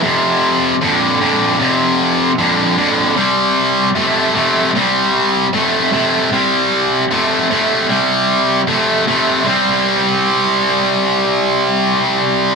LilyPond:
\new Staff \with { instrumentName = "Distorted electric guitar" } { \clef bass \time 4/4 \key f \dorian \tempo 4 = 76 <f, c>4 <f, d>8 <f, d>8 <f, c>4 <f, d>8 <f, d>8 | <c g>4 <c a>8 <c a>8 <c g>4 <c a>8 <c a>8 | <c g>4 <c a>8 <c a>8 <c g>4 <c a>8 <c a>8 | <c g c'>1 | }